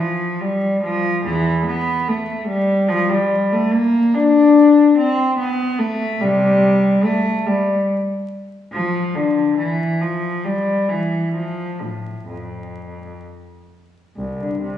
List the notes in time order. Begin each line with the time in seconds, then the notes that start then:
0.00 F3
0.41 G3
0.84 F3
1.25 E2 E3
1.66 B3
2.09 A3
2.48 G3
2.89 F3
3.10 G3
3.53 A3
3.73 A#3
4.15 D4
4.98 C4
5.39 B3
5.79 A3
6.21 C3 G3
7.04 A3
7.46 G3
8.73 F3
9.16 D3
9.58 E3
10.01 F3
10.45 G3
10.89 E3
11.36 F3
11.82 A2
12.29 F2
14.17 C2
14.40 D3
14.62 C3